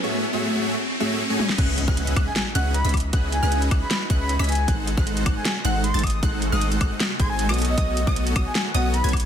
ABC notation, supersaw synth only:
X:1
M:4/4
L:1/16
Q:1/4=155
K:C#m
V:1 name="Supersaw synth"
[A,FGce]2 z [A,FGce]3 [A,FGce] z3 [A,FGce]2 z [A,FGcg] z2 | [CGBdef]2 z [CGBdef]3 [CGBdef] z3 [CGBdef]2 z [CGBdeb] z2 | [CGBdef]2 z [CGBdef]3 [CGBdf] z3 [CGBdef]2 z [CGBdeb] z2 | [G,DA^Bf]2 z [G,DABf]3 f z3 [G,DABf]2 z [G,DABa] z2 |
[G,DA^Bf]2 z [G,DABf]3 [G,DABf] z3 [G,DABg]3 [=B,FAcd]3 | [FAc]2 z [B,FAcd]3 [B,FA] z3 [B,FAcd]2 z [B,FAcg] z2 |]